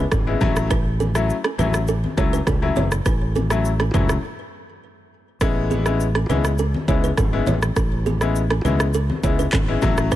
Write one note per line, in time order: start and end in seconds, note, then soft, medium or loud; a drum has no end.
0.12 0.34 G#1 medium
0.12 0.21 C#4 medium
0.12 0.20 A4 medium
0.12 kick medium
0.12 cross-stick loud
0.12 low conga medium
0.12 shaker medium
0.27 0.45 G#3 medium
0.27 0.45 B3 medium
0.27 0.40 C#4 medium
0.27 0.40 E4 medium
0.41 1.30 A1 loud
0.41 0.68 F#3 medium
0.41 0.68 A3 medium
0.41 0.68 C#4 medium
0.41 0.68 E4 loud
0.41 kick medium
0.41 high conga medium
0.41 low conga medium
0.41 shaker soft
0.56 cross-stick loud
0.56 shaker medium
0.70 0.80 D4 medium
0.70 0.79 B4 loud
0.70 kick loud
0.70 cross-stick medium
0.70 shaker medium
1.00 1.09 C#4 medium
1.00 1.08 A4 medium
1.00 high conga medium
1.00 shaker soft
1.15 1.34 F#3 medium
1.15 1.34 A3 medium
1.15 1.34 C#4 medium
1.15 1.34 E4 medium
1.15 cross-stick medium
1.15 shaker medium
1.30 shaker medium
1.44 1.54 C#4 medium
1.44 1.53 A4 medium
1.44 cross-stick medium
1.58 2.03 A1 medium
1.58 1.78 F#3 medium
1.58 1.78 A3 medium
1.58 1.78 C#4 medium
1.58 1.68 D4 medium
1.58 1.78 E4 medium
1.58 1.67 B4 medium
1.58 high conga medium
1.58 low conga medium
1.58 shaker medium
1.74 cross-stick loud
1.74 shaker medium
1.88 1.97 C#4 medium
1.88 1.97 A4 medium
1.88 shaker medium
2.04 high conga medium
2.17 2.40 C#2 loud
2.17 2.37 F#3 medium
2.17 2.37 A3 medium
2.17 2.37 C#4 medium
2.17 2.37 E4 medium
2.17 2.27 E4 medium
2.17 2.26 C#5 medium
2.17 kick medium
2.17 shaker medium
2.33 2.42 D4 medium
2.33 2.41 B4 medium
2.33 shaker medium
2.47 2.69 C#2 medium
2.47 2.56 C#4 medium
2.47 2.55 A4 medium
2.47 kick medium
2.47 cross-stick medium
2.47 low conga medium
2.47 shaker medium
2.62 2.81 F#3 medium
2.62 2.81 A3 medium
2.62 2.81 C#4 medium
2.62 2.81 E4 medium
2.76 2.99 F#1 medium
2.76 2.86 E4 medium
2.76 2.85 C#5 medium
2.76 high conga medium
2.76 low conga medium
2.76 shaker soft
2.91 cross-stick loud
2.91 shaker medium
3.06 3.90 A1 loud
3.06 3.15 D4 medium
3.06 3.14 B4 medium
3.06 kick loud
3.06 cross-stick medium
3.06 shaker medium
3.35 3.44 C#4 medium
3.35 3.44 A4 medium
3.35 high conga medium
3.35 shaker soft
3.50 3.69 F#3 medium
3.50 3.69 A3 medium
3.50 3.69 C#4 medium
3.50 3.69 E4 medium
3.50 cross-stick loud
3.50 shaker medium
3.65 shaker medium
3.80 3.89 C#4 medium
3.80 3.88 A4 medium
3.80 cross-stick medium
3.94 4.16 C#2 medium
3.94 4.13 F#3 medium
3.94 4.13 A3 medium
3.94 4.13 C#4 medium
3.94 4.03 D4 medium
3.94 4.14 E4 medium
3.94 4.02 B4 medium
3.94 kick loud
3.94 mid tom medium
3.94 high conga medium
3.94 low conga medium
3.94 shaker medium
4.09 cross-stick loud
4.09 shaker medium
5.41 6.25 A1 loud
5.41 5.82 G#3 loud
5.41 5.82 B3 medium
5.41 5.82 C#4 medium
5.41 5.50 C#4 medium
5.41 5.82 E4 loud
5.41 5.49 A4 loud
5.41 kick loud
5.41 cross-stick medium
5.41 shaker medium
5.70 5.80 B3 medium
5.70 5.79 G#4 medium
5.70 high conga medium
5.70 shaker soft
5.86 6.04 G#3 medium
5.86 6.04 B3 medium
5.86 6.04 C#4 medium
5.86 6.04 E4 medium
5.86 cross-stick medium
5.86 shaker medium
6.00 shaker medium
6.15 6.24 C#4 medium
6.15 6.24 A4 medium
6.15 cross-stick medium
6.29 6.74 C#2 medium
6.29 6.49 G#3 medium
6.29 6.49 B3 medium
6.29 6.49 C#4 medium
6.29 6.39 D4 medium
6.29 6.49 E4 medium
6.29 6.38 B4 medium
6.29 high conga medium
6.29 low conga medium
6.29 shaker medium
6.44 cross-stick loud
6.44 shaker medium
6.58 6.68 C#4 medium
6.58 6.67 A4 medium
6.58 shaker medium
6.74 high conga medium
6.88 7.10 C#2 medium
6.88 7.07 G#3 medium
6.88 7.08 B3 medium
6.88 7.08 C#4 medium
6.88 7.08 E4 medium
6.88 6.97 E4 medium
6.88 6.97 C#5 medium
6.88 kick medium
6.88 shaker medium
7.04 7.13 D4 medium
7.04 7.12 B4 medium
7.04 shaker medium
7.17 7.40 G#1 medium
7.17 7.27 C#4 medium
7.17 7.26 A4 medium
7.17 kick medium
7.17 cross-stick medium
7.17 high conga medium
7.17 low conga medium
7.17 shaker medium
7.33 7.51 G#3 medium
7.33 7.51 B3 medium
7.33 7.51 C#4 medium
7.33 7.52 E4 medium
7.46 7.69 A1 loud
7.46 7.56 E4 medium
7.46 7.55 C#5 medium
7.46 high conga loud
7.46 low conga medium
7.46 shaker soft
7.62 cross-stick loud
7.62 shaker medium
7.76 8.61 A1 loud
7.76 7.86 C#4 medium
7.76 7.85 A4 medium
7.76 kick loud
7.76 cross-stick loud
7.76 shaker medium
8.06 8.15 B3 medium
8.06 8.14 G#4 medium
8.06 high conga medium
8.06 shaker soft
8.21 8.40 G#3 medium
8.21 8.40 B3 medium
8.21 8.40 C#4 medium
8.21 8.40 E4 medium
8.21 cross-stick medium
8.21 shaker medium
8.36 shaker medium
8.50 8.60 C#4 medium
8.50 8.59 A4 medium
8.50 cross-stick loud
8.64 9.09 C#2 medium
8.64 8.84 G#3 medium
8.64 8.84 B3 medium
8.64 8.84 C#4 medium
8.64 8.74 D4 medium
8.64 8.84 E4 medium
8.64 8.73 B4 medium
8.64 high conga medium
8.64 low conga medium
8.64 shaker medium
8.80 cross-stick loud
8.80 shaker medium
8.94 9.03 C#4 medium
8.94 9.03 A4 medium
8.94 shaker medium
9.10 high conga medium
9.23 9.46 C#2 loud
9.23 9.43 G#3 medium
9.23 9.43 B3 medium
9.23 9.43 C#4 medium
9.23 9.43 E4 medium
9.23 9.33 E4 medium
9.23 9.32 C#5 medium
9.23 kick medium
9.23 shaker medium
9.39 9.48 D4 medium
9.39 9.47 B4 medium
9.39 shaker medium
9.53 9.75 G#1 loud
9.53 9.62 C#4 medium
9.53 9.61 A4 medium
9.53 kick medium
9.53 cross-stick medium
9.53 clap loud
9.53 high conga medium
9.53 low conga medium
9.53 shaker medium
9.68 9.87 G#3 medium
9.68 9.87 B3 medium
9.68 9.81 C#4 medium
9.68 9.81 E4 medium
9.82 10.16 A1 medium
9.82 10.09 F#3 loud
9.82 10.09 A3 medium
9.82 10.10 C#4 medium
9.82 10.10 E4 loud
9.82 kick medium
9.82 high conga medium
9.82 low conga medium
9.82 shaker soft
9.97 cross-stick loud
9.97 shaker medium
10.12 10.16 B4 loud
10.12 kick loud
10.12 cross-stick medium
10.12 shaker medium